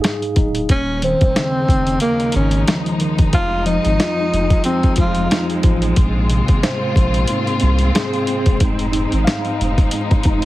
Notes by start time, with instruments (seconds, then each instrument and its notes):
Already playing: tine electric piano G#2 D#4 F5
0.02 tine electric piano G#4, snare, closed hi-hat
0.22 closed hi-hat
0.36 sub bass D1, tine electric piano D#4, kick, closed hi-hat
0.55 closed hi-hat
0.69 sub bass D#1, tine electric piano D#2, string section C#3 F3 G#3 D#4, tenor saxophone C#4, kick, closed hi-hat
1.02 tine electric piano D#3, tenor saxophone C4, closed hi-hat
1.21 sub bass D#1, kick, closed hi-hat
1.36 tine electric piano C#3, snare, closed hi-hat
1.69 sub bass F1, kick, closed hi-hat
1.87 closed hi-hat
2.00 tine electric piano D#2, tenor saxophone A#3, closed hi-hat
2.20 closed hi-hat
2.32 sub bass G#1, tine electric piano D#3, tenor saxophone C#4, closed hi-hat
2.51 closed hi-hat
2.67 tine electric piano F3, snare, closed hi-hat
2.86 closed hi-hat
3.00 tine electric piano D#3, closed hi-hat
3.18 sub bass E1, kick, closed hi-hat
3.33 sub bass F1, tine electric piano F2, string section C4, tenor saxophone F4, kick, closed hi-hat
3.66 tine electric piano F3, tenor saxophone D#4, closed hi-hat
3.85 sub bass G#1, closed hi-hat
4.00 tine electric piano F4, snare, closed hi-hat
4.33 sub bass F1, closed hi-hat
4.50 kick, closed hi-hat
4.64 tine electric piano F2, tenor saxophone C4, closed hi-hat
4.83 kick, closed hi-hat
4.96 sub bass F1, tine electric piano F3, kick, closed hi-hat
5.00 tenor saxophone F4
5.15 closed hi-hat
5.31 tine electric piano D#4, snare, closed hi-hat
5.50 closed hi-hat
5.63 sub bass A1, tine electric piano F3, kick, closed hi-hat
5.82 closed hi-hat
5.96 sub bass A#1, tine electric piano G#2, string section A#3 F4, kick, closed hi-hat
6.29 tine electric piano C3, closed hi-hat
6.48 sub bass G#1, kick, closed hi-hat
6.63 tine electric piano C5, snare, closed hi-hat
6.96 sub bass A#1, kick, closed hi-hat
7.14 closed hi-hat
7.28 tine electric piano G#2, closed hi-hat
7.47 closed hi-hat
7.60 sub bass C2, tine electric piano C4, closed hi-hat
7.79 closed hi-hat
7.95 tine electric piano G#4, snare, closed hi-hat
8.13 closed hi-hat
8.27 tine electric piano C4, closed hi-hat
8.46 sub bass E1, kick, closed hi-hat
8.60 sub bass F1, tine electric piano G#2, string section F3 D#4, kick, closed hi-hat
8.79 closed hi-hat
8.92 tine electric piano D#4, closed hi-hat
9.12 sub bass G#1, closed hi-hat
9.24 tine electric piano F5, snare, closed hi-hat
9.45 closed hi-hat
9.60 sub bass F1, closed hi-hat
9.78 kick, closed hi-hat
9.91 tine electric piano G#2, closed hi-hat
10.11 kick, closed hi-hat
10.23 sub bass F1, tine electric piano D#4, kick, closed hi-hat